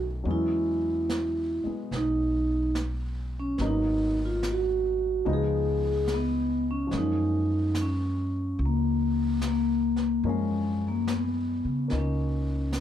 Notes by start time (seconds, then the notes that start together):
Already playing: B1 D#3 F#3 A3 C#4
0.24 E2 F#3 G#3 B3, brush sweep
0.28 C#4 E4
1.09 snare, hi-hat pedal
1.64 G#3 B3, muted upright bass stroke
1.91 B1, brush sweep, snare
1.96 D#4
2.75 snare, hi-hat pedal
3.40 C#4
3.58 G#1 F#3 A#3 B3 D#4, brush sweep, snare
3.67 D#4
4.25 F4
4.43 snare, hi-hat pedal
4.51 F#4
5.25 C#2 F3 G#3 B3 D#4, brush sweep
5.33 G#4
5.87 G#4
6.08 snare, hi-hat pedal
6.14 B3
6.71 C#4
6.87 F3 G#3
6.91 F#2 A#3, brush sweep, snare
6.98 C#4 D#4
7.75 snare, hi-hat pedal
7.81 C#4
8.58 C#2, brush sweep
8.66 A#3
9.41 snare, hi-hat pedal
9.48 A#3
9.96 snare
10.23 F#2 F3 G#3 C#4 A#4, brush sweep
10.29 G#3
10.88 A#3
11.07 snare, hi-hat pedal
11.13 B3
11.65 C#3
11.88 C#2 A#3 C#4 D#4, brush sweep, snare
11.98 C#4
12.72 snare, hi-hat pedal